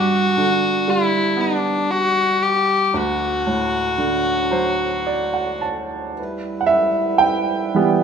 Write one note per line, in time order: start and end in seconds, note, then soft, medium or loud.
0.00 2.91 G2 medium
0.00 0.91 F#4 medium
0.37 2.38 D3 soft
0.88 2.91 G3 soft
0.88 1.42 E4 medium
1.37 2.90 B3 soft
1.37 1.92 D4 medium
1.90 2.44 F#4 medium
2.43 2.97 G4 medium
2.94 6.14 D2 soft
2.94 5.64 F#4 medium
3.47 5.59 A2 soft
3.98 6.13 D3 soft
4.51 6.13 F#3 soft
4.51 5.04 C5 soft
5.07 5.33 D5 soft
5.34 5.61 F#5 soft
5.61 6.13 A5 soft
6.16 8.04 G3 medium
6.16 8.04 E4 medium
6.16 8.04 B4 medium
6.61 6.70 F#5 soft
6.67 7.24 E5 medium
7.18 8.04 G5 medium
7.75 8.04 E3 soft
7.75 8.04 G3 soft
7.75 8.04 B3 medium